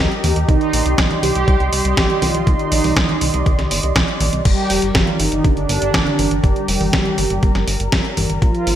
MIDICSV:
0, 0, Header, 1, 5, 480
1, 0, Start_track
1, 0, Tempo, 495868
1, 470, Time_signature, 4, 2, 24, 8
1, 8476, End_track
2, 0, Start_track
2, 0, Title_t, "Analog synth pad"
2, 0, Program_c, 0, 89
2, 0, Note_on_c, 0, 67, 85
2, 0, Note_on_c, 0, 70, 76
2, 0, Note_on_c, 0, 75, 75
2, 0, Note_on_c, 0, 82, 94
2, 432, Note_off_c, 0, 75, 0
2, 433, Note_off_c, 0, 82, 0
2, 434, Note_off_c, 0, 70, 0
2, 471, Note_on_c, 0, 74, 76
2, 471, Note_on_c, 0, 75, 78
2, 472, Note_on_c, 0, 84, 92
2, 4272, Note_off_c, 0, 67, 0
2, 4272, Note_off_c, 0, 75, 0
2, 4273, Note_off_c, 0, 84, 0
2, 4312, Note_on_c, 0, 67, 83
2, 4312, Note_on_c, 0, 70, 77
2, 4312, Note_on_c, 0, 82, 93
2, 8112, Note_off_c, 0, 74, 0
2, 8113, Note_off_c, 0, 67, 0
2, 8150, Note_on_c, 0, 72, 79
2, 8151, Note_on_c, 0, 65, 85
2, 8476, Note_off_c, 0, 65, 0
2, 8476, Note_off_c, 0, 70, 0
2, 8476, Note_off_c, 0, 72, 0
2, 8476, Note_off_c, 0, 82, 0
2, 8476, End_track
3, 0, Start_track
3, 0, Title_t, "Analog polysynth"
3, 0, Program_c, 1, 90
3, 0, Note_on_c, 1, 55, 85
3, 0, Note_on_c, 1, 67, 115
3, 195, Note_off_c, 1, 67, 0
3, 197, Note_off_c, 1, 55, 0
3, 469, Note_on_c, 1, 63, 122
3, 475, Note_on_c, 1, 51, 93
3, 916, Note_off_c, 1, 63, 0
3, 920, Note_off_c, 1, 51, 0
3, 1191, Note_on_c, 1, 67, 117
3, 1197, Note_on_c, 1, 55, 90
3, 1637, Note_off_c, 1, 67, 0
3, 1640, Note_off_c, 1, 55, 0
3, 1671, Note_on_c, 1, 67, 104
3, 1679, Note_on_c, 1, 55, 81
3, 1898, Note_off_c, 1, 55, 0
3, 1902, Note_off_c, 1, 67, 0
3, 1913, Note_on_c, 1, 67, 105
3, 1918, Note_on_c, 1, 55, 82
3, 2138, Note_off_c, 1, 55, 0
3, 2152, Note_on_c, 1, 65, 94
3, 2157, Note_on_c, 1, 53, 77
3, 2159, Note_off_c, 1, 67, 0
3, 2377, Note_off_c, 1, 53, 0
3, 2396, Note_on_c, 1, 63, 96
3, 2399, Note_off_c, 1, 65, 0
3, 2400, Note_on_c, 1, 51, 78
3, 3795, Note_off_c, 1, 63, 0
3, 3796, Note_off_c, 1, 51, 0
3, 4312, Note_on_c, 1, 67, 120
3, 4320, Note_on_c, 1, 55, 92
3, 4762, Note_off_c, 1, 55, 0
3, 4790, Note_on_c, 1, 65, 102
3, 4797, Note_on_c, 1, 53, 81
3, 4806, Note_off_c, 1, 67, 0
3, 5017, Note_off_c, 1, 53, 0
3, 5030, Note_on_c, 1, 63, 99
3, 5037, Note_off_c, 1, 65, 0
3, 5038, Note_on_c, 1, 51, 76
3, 5258, Note_off_c, 1, 51, 0
3, 5271, Note_on_c, 1, 62, 99
3, 5278, Note_off_c, 1, 63, 0
3, 5279, Note_on_c, 1, 50, 76
3, 5498, Note_off_c, 1, 50, 0
3, 5502, Note_off_c, 1, 62, 0
3, 5513, Note_on_c, 1, 62, 101
3, 5522, Note_on_c, 1, 50, 78
3, 6197, Note_off_c, 1, 50, 0
3, 6234, Note_on_c, 1, 67, 111
3, 6241, Note_on_c, 1, 55, 86
3, 6254, Note_off_c, 1, 62, 0
3, 7874, Note_off_c, 1, 67, 0
3, 7877, Note_off_c, 1, 55, 0
3, 8150, Note_on_c, 1, 65, 106
3, 8157, Note_on_c, 1, 53, 83
3, 8476, Note_off_c, 1, 53, 0
3, 8476, Note_off_c, 1, 65, 0
3, 8476, End_track
4, 0, Start_track
4, 0, Title_t, "Analog synth bass"
4, 0, Program_c, 2, 38
4, 231, Note_on_c, 2, 39, 92
4, 319, Note_off_c, 2, 39, 0
4, 352, Note_on_c, 2, 39, 81
4, 439, Note_off_c, 2, 39, 0
4, 470, Note_on_c, 2, 36, 102
4, 559, Note_off_c, 2, 36, 0
4, 710, Note_on_c, 2, 34, 91
4, 798, Note_off_c, 2, 34, 0
4, 830, Note_on_c, 2, 36, 79
4, 918, Note_off_c, 2, 36, 0
4, 951, Note_on_c, 2, 36, 100
4, 1039, Note_off_c, 2, 36, 0
4, 1190, Note_on_c, 2, 36, 90
4, 1278, Note_off_c, 2, 36, 0
4, 1311, Note_on_c, 2, 36, 84
4, 1399, Note_off_c, 2, 36, 0
4, 1430, Note_on_c, 2, 36, 101
4, 1519, Note_off_c, 2, 36, 0
4, 1551, Note_on_c, 2, 36, 75
4, 1639, Note_off_c, 2, 36, 0
4, 1671, Note_on_c, 2, 36, 91
4, 1759, Note_off_c, 2, 36, 0
4, 1790, Note_on_c, 2, 36, 85
4, 1878, Note_off_c, 2, 36, 0
4, 1911, Note_on_c, 2, 36, 102
4, 1999, Note_off_c, 2, 36, 0
4, 2151, Note_on_c, 2, 36, 97
4, 2239, Note_off_c, 2, 36, 0
4, 2271, Note_on_c, 2, 36, 80
4, 2359, Note_off_c, 2, 36, 0
4, 2391, Note_on_c, 2, 36, 100
4, 2479, Note_off_c, 2, 36, 0
4, 2632, Note_on_c, 2, 34, 95
4, 2719, Note_off_c, 2, 34, 0
4, 2752, Note_on_c, 2, 36, 79
4, 2840, Note_off_c, 2, 36, 0
4, 2871, Note_on_c, 2, 36, 99
4, 2959, Note_off_c, 2, 36, 0
4, 3113, Note_on_c, 2, 36, 94
4, 3200, Note_off_c, 2, 36, 0
4, 3233, Note_on_c, 2, 36, 81
4, 3320, Note_off_c, 2, 36, 0
4, 3352, Note_on_c, 2, 36, 97
4, 3439, Note_off_c, 2, 36, 0
4, 3472, Note_on_c, 2, 36, 75
4, 3560, Note_off_c, 2, 36, 0
4, 3593, Note_on_c, 2, 31, 94
4, 3680, Note_off_c, 2, 31, 0
4, 3712, Note_on_c, 2, 36, 87
4, 3799, Note_off_c, 2, 36, 0
4, 3832, Note_on_c, 2, 36, 101
4, 3919, Note_off_c, 2, 36, 0
4, 4072, Note_on_c, 2, 34, 94
4, 4159, Note_off_c, 2, 34, 0
4, 4191, Note_on_c, 2, 36, 81
4, 4279, Note_off_c, 2, 36, 0
4, 4311, Note_on_c, 2, 31, 102
4, 4399, Note_off_c, 2, 31, 0
4, 4552, Note_on_c, 2, 29, 92
4, 4640, Note_off_c, 2, 29, 0
4, 4671, Note_on_c, 2, 31, 79
4, 4759, Note_off_c, 2, 31, 0
4, 4792, Note_on_c, 2, 31, 102
4, 4879, Note_off_c, 2, 31, 0
4, 5030, Note_on_c, 2, 31, 92
4, 5118, Note_off_c, 2, 31, 0
4, 5151, Note_on_c, 2, 31, 83
4, 5239, Note_off_c, 2, 31, 0
4, 5271, Note_on_c, 2, 31, 102
4, 5359, Note_off_c, 2, 31, 0
4, 5391, Note_on_c, 2, 31, 74
4, 5479, Note_off_c, 2, 31, 0
4, 5511, Note_on_c, 2, 31, 93
4, 5599, Note_off_c, 2, 31, 0
4, 5630, Note_on_c, 2, 31, 85
4, 5719, Note_off_c, 2, 31, 0
4, 5751, Note_on_c, 2, 31, 101
4, 5839, Note_off_c, 2, 31, 0
4, 5990, Note_on_c, 2, 31, 92
4, 6078, Note_off_c, 2, 31, 0
4, 6109, Note_on_c, 2, 31, 80
4, 6198, Note_off_c, 2, 31, 0
4, 6231, Note_on_c, 2, 31, 105
4, 6319, Note_off_c, 2, 31, 0
4, 6469, Note_on_c, 2, 29, 95
4, 6558, Note_off_c, 2, 29, 0
4, 6589, Note_on_c, 2, 31, 79
4, 6678, Note_off_c, 2, 31, 0
4, 6711, Note_on_c, 2, 31, 98
4, 6799, Note_off_c, 2, 31, 0
4, 6950, Note_on_c, 2, 31, 94
4, 7038, Note_off_c, 2, 31, 0
4, 7071, Note_on_c, 2, 31, 83
4, 7159, Note_off_c, 2, 31, 0
4, 7191, Note_on_c, 2, 31, 98
4, 7279, Note_off_c, 2, 31, 0
4, 7311, Note_on_c, 2, 31, 77
4, 7399, Note_off_c, 2, 31, 0
4, 7431, Note_on_c, 2, 31, 96
4, 7519, Note_off_c, 2, 31, 0
4, 7550, Note_on_c, 2, 31, 84
4, 7639, Note_off_c, 2, 31, 0
4, 7671, Note_on_c, 2, 31, 101
4, 7759, Note_off_c, 2, 31, 0
4, 7913, Note_on_c, 2, 31, 94
4, 8000, Note_off_c, 2, 31, 0
4, 8033, Note_on_c, 2, 31, 82
4, 8120, Note_off_c, 2, 31, 0
4, 8151, Note_on_c, 2, 34, 100
4, 8239, Note_off_c, 2, 34, 0
4, 8391, Note_on_c, 2, 32, 96
4, 8476, Note_off_c, 2, 32, 0
4, 8476, End_track
5, 0, Start_track
5, 0, Title_t, "Drums"
5, 111, Note_on_c, 9, 42, 25
5, 208, Note_off_c, 9, 42, 0
5, 231, Note_on_c, 9, 46, 105
5, 231, Note_on_c, 9, 63, 79
5, 328, Note_off_c, 9, 46, 0
5, 328, Note_off_c, 9, 63, 0
5, 351, Note_on_c, 9, 42, 53
5, 447, Note_off_c, 9, 42, 0
5, 470, Note_on_c, 9, 36, 113
5, 471, Note_on_c, 9, 42, 54
5, 567, Note_off_c, 9, 36, 0
5, 568, Note_off_c, 9, 42, 0
5, 591, Note_on_c, 9, 42, 26
5, 688, Note_off_c, 9, 42, 0
5, 711, Note_on_c, 9, 46, 108
5, 807, Note_off_c, 9, 46, 0
5, 830, Note_on_c, 9, 42, 53
5, 927, Note_off_c, 9, 42, 0
5, 950, Note_on_c, 9, 36, 99
5, 951, Note_on_c, 9, 38, 111
5, 951, Note_on_c, 9, 42, 54
5, 1047, Note_off_c, 9, 36, 0
5, 1047, Note_off_c, 9, 38, 0
5, 1047, Note_off_c, 9, 42, 0
5, 1071, Note_on_c, 9, 42, 26
5, 1071, Note_on_c, 9, 63, 80
5, 1168, Note_off_c, 9, 42, 0
5, 1168, Note_off_c, 9, 63, 0
5, 1192, Note_on_c, 9, 46, 106
5, 1288, Note_off_c, 9, 46, 0
5, 1311, Note_on_c, 9, 42, 53
5, 1407, Note_off_c, 9, 42, 0
5, 1430, Note_on_c, 9, 36, 112
5, 1431, Note_on_c, 9, 42, 52
5, 1527, Note_off_c, 9, 36, 0
5, 1528, Note_off_c, 9, 42, 0
5, 1551, Note_on_c, 9, 42, 27
5, 1648, Note_off_c, 9, 42, 0
5, 1671, Note_on_c, 9, 46, 106
5, 1767, Note_off_c, 9, 46, 0
5, 1791, Note_on_c, 9, 42, 53
5, 1888, Note_off_c, 9, 42, 0
5, 1910, Note_on_c, 9, 36, 102
5, 1910, Note_on_c, 9, 38, 112
5, 1910, Note_on_c, 9, 42, 54
5, 1910, Note_on_c, 9, 63, 61
5, 2007, Note_off_c, 9, 36, 0
5, 2007, Note_off_c, 9, 38, 0
5, 2007, Note_off_c, 9, 42, 0
5, 2007, Note_off_c, 9, 63, 0
5, 2031, Note_on_c, 9, 42, 26
5, 2128, Note_off_c, 9, 42, 0
5, 2150, Note_on_c, 9, 46, 104
5, 2150, Note_on_c, 9, 63, 78
5, 2247, Note_off_c, 9, 46, 0
5, 2247, Note_off_c, 9, 63, 0
5, 2271, Note_on_c, 9, 42, 54
5, 2367, Note_off_c, 9, 42, 0
5, 2391, Note_on_c, 9, 36, 108
5, 2391, Note_on_c, 9, 42, 55
5, 2487, Note_off_c, 9, 36, 0
5, 2488, Note_off_c, 9, 42, 0
5, 2511, Note_on_c, 9, 42, 27
5, 2608, Note_off_c, 9, 42, 0
5, 2631, Note_on_c, 9, 46, 108
5, 2728, Note_off_c, 9, 46, 0
5, 2752, Note_on_c, 9, 46, 64
5, 2752, Note_on_c, 9, 63, 58
5, 2849, Note_off_c, 9, 46, 0
5, 2849, Note_off_c, 9, 63, 0
5, 2871, Note_on_c, 9, 36, 102
5, 2871, Note_on_c, 9, 38, 115
5, 2967, Note_off_c, 9, 38, 0
5, 2968, Note_off_c, 9, 36, 0
5, 2991, Note_on_c, 9, 42, 26
5, 2991, Note_on_c, 9, 63, 76
5, 3088, Note_off_c, 9, 42, 0
5, 3088, Note_off_c, 9, 63, 0
5, 3110, Note_on_c, 9, 46, 105
5, 3207, Note_off_c, 9, 46, 0
5, 3232, Note_on_c, 9, 42, 54
5, 3329, Note_off_c, 9, 42, 0
5, 3351, Note_on_c, 9, 36, 113
5, 3352, Note_on_c, 9, 42, 52
5, 3448, Note_off_c, 9, 36, 0
5, 3449, Note_off_c, 9, 42, 0
5, 3472, Note_on_c, 9, 38, 34
5, 3472, Note_on_c, 9, 42, 28
5, 3569, Note_off_c, 9, 38, 0
5, 3569, Note_off_c, 9, 42, 0
5, 3592, Note_on_c, 9, 46, 109
5, 3688, Note_off_c, 9, 46, 0
5, 3711, Note_on_c, 9, 42, 54
5, 3808, Note_off_c, 9, 42, 0
5, 3831, Note_on_c, 9, 38, 112
5, 3831, Note_on_c, 9, 42, 55
5, 3832, Note_on_c, 9, 36, 101
5, 3928, Note_off_c, 9, 36, 0
5, 3928, Note_off_c, 9, 38, 0
5, 3928, Note_off_c, 9, 42, 0
5, 3951, Note_on_c, 9, 42, 27
5, 4048, Note_off_c, 9, 42, 0
5, 4070, Note_on_c, 9, 46, 106
5, 4070, Note_on_c, 9, 63, 74
5, 4167, Note_off_c, 9, 46, 0
5, 4167, Note_off_c, 9, 63, 0
5, 4190, Note_on_c, 9, 42, 54
5, 4287, Note_off_c, 9, 42, 0
5, 4310, Note_on_c, 9, 42, 54
5, 4310, Note_on_c, 9, 49, 76
5, 4311, Note_on_c, 9, 36, 118
5, 4407, Note_off_c, 9, 42, 0
5, 4407, Note_off_c, 9, 49, 0
5, 4408, Note_off_c, 9, 36, 0
5, 4431, Note_on_c, 9, 42, 28
5, 4527, Note_off_c, 9, 42, 0
5, 4549, Note_on_c, 9, 46, 101
5, 4646, Note_off_c, 9, 46, 0
5, 4669, Note_on_c, 9, 42, 54
5, 4765, Note_off_c, 9, 42, 0
5, 4790, Note_on_c, 9, 38, 119
5, 4790, Note_on_c, 9, 42, 53
5, 4791, Note_on_c, 9, 36, 109
5, 4887, Note_off_c, 9, 38, 0
5, 4887, Note_off_c, 9, 42, 0
5, 4888, Note_off_c, 9, 36, 0
5, 4910, Note_on_c, 9, 42, 27
5, 4910, Note_on_c, 9, 63, 72
5, 5007, Note_off_c, 9, 42, 0
5, 5007, Note_off_c, 9, 63, 0
5, 5029, Note_on_c, 9, 46, 102
5, 5126, Note_off_c, 9, 46, 0
5, 5150, Note_on_c, 9, 42, 54
5, 5247, Note_off_c, 9, 42, 0
5, 5271, Note_on_c, 9, 36, 113
5, 5271, Note_on_c, 9, 42, 52
5, 5367, Note_off_c, 9, 36, 0
5, 5368, Note_off_c, 9, 42, 0
5, 5391, Note_on_c, 9, 42, 27
5, 5487, Note_off_c, 9, 42, 0
5, 5511, Note_on_c, 9, 46, 104
5, 5608, Note_off_c, 9, 46, 0
5, 5632, Note_on_c, 9, 42, 57
5, 5729, Note_off_c, 9, 42, 0
5, 5750, Note_on_c, 9, 36, 105
5, 5752, Note_on_c, 9, 38, 121
5, 5752, Note_on_c, 9, 42, 55
5, 5752, Note_on_c, 9, 63, 59
5, 5847, Note_off_c, 9, 36, 0
5, 5848, Note_off_c, 9, 38, 0
5, 5848, Note_off_c, 9, 42, 0
5, 5848, Note_off_c, 9, 63, 0
5, 5872, Note_on_c, 9, 42, 26
5, 5968, Note_off_c, 9, 42, 0
5, 5991, Note_on_c, 9, 46, 100
5, 5991, Note_on_c, 9, 63, 71
5, 6088, Note_off_c, 9, 46, 0
5, 6088, Note_off_c, 9, 63, 0
5, 6110, Note_on_c, 9, 42, 56
5, 6207, Note_off_c, 9, 42, 0
5, 6230, Note_on_c, 9, 36, 118
5, 6231, Note_on_c, 9, 42, 55
5, 6327, Note_off_c, 9, 36, 0
5, 6327, Note_off_c, 9, 42, 0
5, 6351, Note_on_c, 9, 42, 27
5, 6448, Note_off_c, 9, 42, 0
5, 6470, Note_on_c, 9, 46, 101
5, 6567, Note_off_c, 9, 46, 0
5, 6589, Note_on_c, 9, 46, 57
5, 6589, Note_on_c, 9, 63, 57
5, 6686, Note_off_c, 9, 46, 0
5, 6686, Note_off_c, 9, 63, 0
5, 6709, Note_on_c, 9, 38, 125
5, 6709, Note_on_c, 9, 42, 52
5, 6711, Note_on_c, 9, 36, 112
5, 6806, Note_off_c, 9, 38, 0
5, 6806, Note_off_c, 9, 42, 0
5, 6808, Note_off_c, 9, 36, 0
5, 6829, Note_on_c, 9, 42, 26
5, 6829, Note_on_c, 9, 63, 73
5, 6926, Note_off_c, 9, 42, 0
5, 6926, Note_off_c, 9, 63, 0
5, 6950, Note_on_c, 9, 46, 97
5, 7046, Note_off_c, 9, 46, 0
5, 7069, Note_on_c, 9, 42, 52
5, 7166, Note_off_c, 9, 42, 0
5, 7190, Note_on_c, 9, 42, 52
5, 7191, Note_on_c, 9, 36, 122
5, 7286, Note_off_c, 9, 42, 0
5, 7288, Note_off_c, 9, 36, 0
5, 7309, Note_on_c, 9, 38, 39
5, 7309, Note_on_c, 9, 42, 26
5, 7406, Note_off_c, 9, 38, 0
5, 7406, Note_off_c, 9, 42, 0
5, 7430, Note_on_c, 9, 46, 101
5, 7526, Note_off_c, 9, 46, 0
5, 7551, Note_on_c, 9, 42, 54
5, 7647, Note_off_c, 9, 42, 0
5, 7670, Note_on_c, 9, 38, 122
5, 7670, Note_on_c, 9, 42, 54
5, 7671, Note_on_c, 9, 36, 111
5, 7766, Note_off_c, 9, 38, 0
5, 7766, Note_off_c, 9, 42, 0
5, 7768, Note_off_c, 9, 36, 0
5, 7790, Note_on_c, 9, 42, 26
5, 7887, Note_off_c, 9, 42, 0
5, 7910, Note_on_c, 9, 46, 102
5, 7910, Note_on_c, 9, 63, 73
5, 8007, Note_off_c, 9, 46, 0
5, 8007, Note_off_c, 9, 63, 0
5, 8031, Note_on_c, 9, 42, 54
5, 8128, Note_off_c, 9, 42, 0
5, 8151, Note_on_c, 9, 36, 120
5, 8151, Note_on_c, 9, 42, 52
5, 8248, Note_off_c, 9, 36, 0
5, 8248, Note_off_c, 9, 42, 0
5, 8272, Note_on_c, 9, 42, 25
5, 8369, Note_off_c, 9, 42, 0
5, 8392, Note_on_c, 9, 46, 98
5, 8476, Note_off_c, 9, 46, 0
5, 8476, End_track
0, 0, End_of_file